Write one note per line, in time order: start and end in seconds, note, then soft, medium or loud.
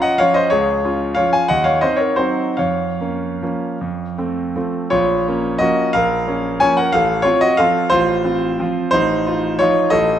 0.00 0.18 C#4 medium
0.00 0.18 F4 medium
0.00 0.19 D#5 medium
0.00 0.20 F#5 medium
0.18 0.49 F3 soft
0.18 0.49 C#4 medium
0.18 0.49 F4 medium
0.18 0.35 C#5 medium
0.18 0.36 F5 loud
0.34 0.51 C5 medium
0.34 0.51 D#5 medium
0.50 0.83 C#2 medium
0.50 1.13 G#4 medium
0.50 1.15 C#5 medium
0.85 1.15 C#4 medium
0.85 1.15 F4 medium
1.15 1.47 F3 soft
1.15 1.47 C#4 soft
1.15 1.47 F4 medium
1.15 1.32 C#5 medium
1.15 1.32 F5 medium
1.33 1.49 F5 medium
1.33 1.50 G#5 medium
1.48 1.82 D#2 medium
1.48 1.65 D#5 medium
1.48 1.65 F#5 medium
1.64 1.81 C#5 medium
1.64 1.82 F5 medium
1.81 2.15 C4 soft
1.81 2.15 D#4 soft
1.81 1.99 C5 medium
1.81 1.99 D#5 medium
1.96 2.16 A#4 medium
1.96 2.17 C#5 medium
2.16 2.56 F#3 soft
2.16 2.57 C4 soft
2.16 2.57 D#4 soft
2.16 2.56 F#4 medium
2.16 2.59 C5 medium
2.57 2.99 F2 medium
2.57 4.50 C#5 medium
2.57 4.54 F5 medium
3.01 3.37 A#3 soft
3.01 3.37 C#4 soft
3.42 3.77 F3 soft
3.42 3.77 A#3 soft
3.42 3.78 C#4 soft
3.81 4.17 F2 medium
4.18 4.52 A3 soft
4.18 4.52 C4 soft
4.56 4.90 F3 soft
4.56 4.90 A3 soft
4.56 4.90 C4 soft
4.90 5.26 A#1 medium
4.90 5.57 F4 medium
4.90 5.60 C#5 medium
5.28 5.59 A#3 medium
5.28 5.59 C#4 medium
5.58 5.91 F3 medium
5.58 5.91 A#3 medium
5.58 5.91 C#4 medium
5.58 5.91 F#4 medium
5.58 5.93 D#5 medium
5.93 6.26 A#1 medium
5.93 6.57 A#4 medium
5.93 6.61 F5 loud
6.27 6.58 A#3 medium
6.27 6.58 C#4 medium
6.60 6.91 F3 medium
6.60 6.91 A#3 medium
6.60 6.91 C#4 medium
6.60 6.77 C#5 medium
6.60 6.78 G#5 loud
6.77 6.93 A#4 medium
6.77 6.93 F#5 medium
6.92 7.25 A1 medium
6.92 7.23 A4 medium
6.92 7.24 F5 loud
7.22 7.56 C4 medium
7.22 7.40 F4 medium
7.22 7.41 C#5 loud
7.41 7.58 F#4 medium
7.41 7.59 D#5 loud
7.57 7.89 F3 medium
7.57 7.89 C4 medium
7.57 7.90 F4 medium
7.57 7.90 A4 medium
7.57 7.92 F5 loud
7.90 8.24 A1 medium
7.90 8.24 F4 medium
7.90 8.89 C5 loud
8.25 8.57 C4 medium
8.25 8.57 F4 medium
8.60 8.90 F3 medium
8.60 8.90 C4 medium
8.60 8.90 F4 medium
8.91 9.26 A1 medium
8.91 9.25 D#4 medium
8.91 9.60 C5 loud
9.26 9.58 D#4 medium
9.26 9.57 F4 medium
9.59 9.90 F3 medium
9.59 9.90 D#4 medium
9.59 9.90 F4 medium
9.59 9.92 C#5 loud
9.90 10.19 A1 medium
9.90 10.19 A4 medium
9.90 10.19 D#5 loud